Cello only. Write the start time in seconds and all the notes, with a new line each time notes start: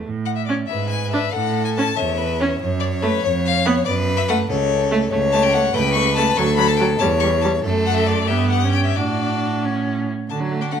0.05 A2
0.69 G#2
1.33 A2
1.97 E2
2.60 F#2
3.23 F2
3.86 F#2
4.49 C#2
5.12 C#2
5.74 C#2
6.37 D2
7.00 E2
7.64 F#2
8.29 G2
8.97 A2
10.30 D3